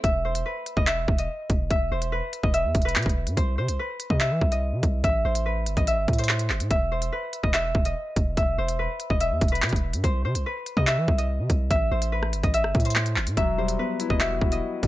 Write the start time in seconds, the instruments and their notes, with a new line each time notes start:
Already playing: harp C5
0.04 808-style bass E1, harp E5, kick, closed hi-hat
0.25 harp C5
0.35 closed hi-hat
0.46 harp B4
0.66 closed hi-hat
0.77 808-style bass E1, harp D#5, kick
0.87 harp E5, clap, closed hi-hat
1.08 808-style bass E1, kick
1.18 harp D#5, closed hi-hat
1.50 808-style bass E1, kick, closed hi-hat
1.70 808-style bass E1, harp E5, kick, closed hi-hat
1.91 808-style bass E1, harp C5
2.02 closed hi-hat
2.12 harp B4
2.33 closed hi-hat
2.43 808-style bass E1, harp D#5, kick
2.54 harp E5, closed hi-hat
2.64 808-style bass E2
2.75 808-style bass E1, kick, closed hi-hat
2.82 harp B4, closed hi-hat
2.89 closed hi-hat
2.96 808-style bass B2, clap, closed hi-hat
3.02 808-style bass E1, kick, closed hi-hat
3.09 closed hi-hat
3.27 808-style bass G2, closed hi-hat
3.37 808-style bass C2, harp C5, kick, closed hi-hat
3.58 808-style bass C3, harp C5
3.68 808-style bass C2, closed hi-hat
3.79 harp B4
4.00 closed hi-hat
4.10 808-style bass C3, harp D#5, kick
4.20 harp E5, clap, closed hi-hat
4.31 808-style bass E3
4.41 808-style bass C2, kick
4.52 harp D#5, closed hi-hat
4.73 808-style bass C3
4.83 808-style bass C2, kick, closed hi-hat
5.04 808-style bass A1, harp E5, kick, closed hi-hat
5.25 808-style bass A1, harp C5
5.35 closed hi-hat
5.46 harp B4
5.66 808-style bass G1, closed hi-hat
5.77 808-style bass A1, harp D#5, kick, closed hi-hat
5.87 harp E5, closed hi-hat
5.98 808-style bass G1
6.08 808-style bass A2, kick, closed hi-hat
6.13 closed hi-hat
6.19 harp C5, closed hi-hat
6.24 closed hi-hat
6.29 clap
6.39 closed hi-hat
6.50 808-style bass G1, clap
6.60 808-style bass A2, closed hi-hat
6.70 808-style bass E1, harp E5, kick, closed hi-hat
6.92 harp C5
7.02 closed hi-hat
7.12 harp B4
7.33 closed hi-hat
7.43 808-style bass E1, harp D#5, kick
7.54 harp E5, clap, closed hi-hat
7.75 808-style bass E1, kick
7.85 harp D#5, closed hi-hat
8.16 808-style bass E1, kick, closed hi-hat
8.37 808-style bass E1, harp E5, kick, closed hi-hat
8.58 808-style bass E1, harp C5
8.68 closed hi-hat
8.79 harp B4
9.00 closed hi-hat
9.10 808-style bass E1, harp D#5, kick
9.21 harp E5, closed hi-hat
9.31 808-style bass E2
9.41 808-style bass E1, kick, closed hi-hat
9.48 harp B4, closed hi-hat
9.55 closed hi-hat
9.62 808-style bass B2, clap, closed hi-hat
9.69 808-style bass E1, kick, closed hi-hat
9.76 closed hi-hat
9.93 808-style bass G2, closed hi-hat
10.04 808-style bass C2, harp C5, kick, closed hi-hat
10.25 808-style bass C3, harp C5
10.35 808-style bass C2, closed hi-hat
10.46 harp B4
10.66 closed hi-hat
10.77 808-style bass C3, harp D#5, kick
10.87 harp E5, clap, closed hi-hat
10.98 808-style bass E3
11.08 808-style bass C2, kick
11.18 harp D#5, closed hi-hat
11.39 808-style bass C3
11.50 808-style bass C2, kick, closed hi-hat
11.71 808-style bass A1, harp E5, kick, closed hi-hat
11.91 808-style bass A1, harp C5
12.02 closed hi-hat
12.12 harp B4
12.23 cross-stick
12.33 808-style bass G1, closed hi-hat
12.43 808-style bass A1, harp D#5, kick, closed hi-hat
12.54 harp E5, closed hi-hat
12.64 808-style bass G1, cross-stick
12.75 808-style bass A2, kick, closed hi-hat
12.80 closed hi-hat
12.85 harp C5, closed hi-hat
12.90 closed hi-hat
12.96 clap
13.06 closed hi-hat
13.16 808-style bass G1, clap
13.27 808-style bass A2, closed hi-hat
13.37 808-style bass E1, grand piano F#3, harp E5, kick, closed hi-hat
13.58 grand piano G3, harp C5
13.68 closed hi-hat
13.79 grand piano B3, harp B4
14.00 grand piano E4, closed hi-hat
14.10 808-style bass E1, harp D#5, kick
14.20 grand piano F#4, harp E5, clap, closed hi-hat
14.41 808-style bass E1, grand piano E4, kick
14.52 harp D#5, closed hi-hat
14.83 808-style bass E1, grand piano G3, kick, closed hi-hat